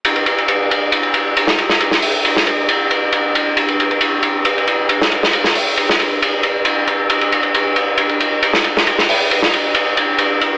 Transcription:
\new DrumStaff \with { instrumentName = "Drums" } \drummode { \time 4/4 \tempo 4 = 136 cymr16 cymr16 cymr16 cymr16 cymr8 cymr8 cymr16 cymr16 cymr8 cymr16 sn16 cymr16 sn16 | cymr16 sn16 hho8 cymr16 sn16 cymr8 cymr8 cymr8 cymr8 cymr8 | cymr16 cymr16 cymr16 cymr16 cymr8 cymr8 cymr16 cymr16 cymr8 cymr16 sn16 cymr16 sn16 | cymr16 sn16 hho8 cymr16 sn16 cymr8 cymr8 cymr8 cymr8 cymr8 |
cymr16 cymr16 cymr16 cymr16 cymr8 cymr8 cymr16 cymr16 cymr8 cymr16 sn16 cymr16 sn16 | cymr16 sn16 hho8 cymr16 sn16 cymr8 cymr8 cymr8 cymr8 cymr8 | }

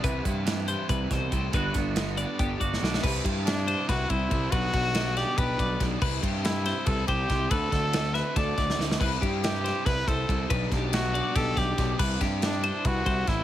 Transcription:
<<
  \new Staff \with { instrumentName = "Clean electric guitar" } { \time 7/8 \key c \lydian \tempo 4 = 140 b'8 g'4 c''8 b'8 c''4 | b'8 r4 d''8 g'8 d''4 | b'8 g'4 c''8 b'8 c''4 | b'8 fis'4 d''8 g'8 d''4 |
b'8 g'4 c''8 b'8 c''4 | b'8 a'4 e''8 a'8 d''4 | b'8 g'4 c''8 b'8 c''4 | b'8 g'4 d''8 g'8 d''4 |
b'8 g'4 c''8 b'8 c''4 | }
  \new Staff \with { instrumentName = "Trumpet" } { \time 7/8 \key c \lydian r2. r8 | r2. r8 | r4 d'4 fis'8 e'4 | fis'4. g'8 b'4 r8 |
r4 e'4 a'8 g'4 | a'4. b'8 d''4 r8 | r4 g'4 b'8 a'4 | r4 fis'4 a'8 g'4 |
r4 d'4 fis'4 e'8 | }
  \new Staff \with { instrumentName = "Clean electric guitar" } { \time 7/8 \key c \lydian << { <e b d' e'>2.~ <e b d' e'>8 | <d b d' fis'>8 b4 b8 b16 d'16 fis'8 d'8 | r2. r8 | r2. r8 |
r2. r8 | r2. r8 | r2. r8 | r2. r8 |
r2. r8 | } \\ { c4 e4 c8 b,8 a,8 | g,4 d2~ d8~ | d2.~ d8 | r2. r8 |
r2. r8 | r2. r8 | r2. r8 | r2. r8 |
r2. r8 | } >> }
  \new Staff \with { instrumentName = "Overdriven electric guitar" } { \time 7/8 \key c \lydian <c g c' e'>8 <g c' e'>8 <c g c' e'>8 <g c' e'>4. <c g c' e'>8 | <g, d g b d'>8 <g b d'>8 <g, d g b d'>8 <g b d'>4. <d g b d'>8 | <c g c' e'>8 <g c' e'>8 <c g c' e'>8 <g c' e'>4. <c g c' e'>8 | <b, g b d'>8 <g b d'>8 <b, g b d'>8 <g b d'>4. <b, g b d'>8 |
<c g c' e'>8 <g c' e'>8 <c g c' e'>8 <g c' e'>4. <c g c' e'>8 | <d a c' fis'>8 <a c' fis'>8 <d a c' fis'>8 <a c' fis'>4. <d a c' fis'>8 | <c g c' e'>8 <g c' e'>8 <c g c' e'>8 <g c' e'>4. <c g c' e'>8 | <b, g b d'>8 <g b d'>8 <b, g b d'>8 <g b d'>4. <b, g b d'>8 |
<c g c' e'>8 <g c' e'>8 <c g c' e'>8 <g c' e'>4. <c g c' e'>8 | }
  \new Staff \with { instrumentName = "Picked electric bass" } { \clef bass \time 7/8 \key c \lydian c,8 g,4. c,8 c,8 c,8 | g,,8 g,,4. g,,8 g,,8 b,,8 | c,8 g,4. c,8 c,8 c,8 | b,,8 b,,4. b,,8 b,,8 b,,8 |
c,8 g,4. c,8 c,8 c,8 | d,8 d,4. d,8 d,8 d,8 | c,8 g,4. c,8 c,8 c,8 | b,,8 b,,4. b,,8 b,,8 b,,8 |
c,8 g,4. c,8 c,8 a,,8 | }
  \new DrumStaff \with { instrumentName = "Drums" } \drummode { \time 7/8 <hh bd>8 <hh bd>8 <hh sn>8 hh8 <hh bd>8 <hh bd sn>8 <hh bd>8 | <hh bd>8 <hh bd sn>8 <hh sn>8 hh8 <hh bd>8 <hh bd>16 sn16 sn16 sn16 | <cymc bd>8 <bd cymr>8 <cymr sn>8 cymr8 <bd cymr sn>8 <bd cymr>8 <bd cymr>8 | <bd cymr>8 <bd cymr>8 <cymr sn>8 <cymr sn>8 <bd cymr>8 <bd cymr>8 <bd cymr sn>8 |
<cymc bd>8 <bd cymr>8 <cymr sn>8 <cymr sn>8 <bd cymr>8 <bd cymr>8 <bd cymr sn>8 | <bd cymr>8 <bd cymr sn>8 <cymr sn>8 <cymr sn>8 <bd cymr sn>8 <bd cymr sn>16 sn16 sn16 sn16 | <cymc bd>8 <bd cymr>8 <cymr sn>8 <cymr sn>8 <bd cymr sn>8 <bd cymr>8 <bd cymr>8 | <bd cymr>8 <bd cymr sn>8 <cymr sn>8 cymr8 <bd cymr sn>8 <bd cymr sn>8 <bd cymr sn>8 |
<cymc bd>8 <bd cymr sn>8 <cymr sn>8 cymr8 <bd cymr>8 <bd cymr>8 <bd cymr sn>8 | }
>>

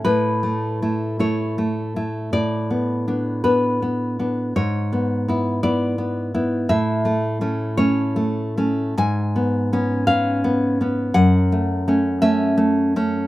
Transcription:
\new Staff \with { instrumentName = "Nylon-string guitar" } { \time 6/8 \key a \major \tempo 4. = 55 << { b'4. cis''4. | d''4. b'4. | cis''4. d''4. | e''4. cis''4. |
gis''4. eis''4. | fis''4. e''8 r4 | } \\ { a,8 a8 <a e'>8 <a e'>8 a8 <a e'>8 | a,8 b8 <b d'>8 <b d'>8 b8 <b d'>8 | gis,8 b8 <b e'>8 <b e'>8 b8 <b e'>8 | a,8 a8 <a cis'>8 <a cis'>8 a8 <a cis'>8 |
gis,8 b8 <b cis'>8 <b cis'>8 b8 <b cis'>8 | fis,8 a8 <a cis'>8 <a cis'>8 a8 <a cis'>8 | } >> }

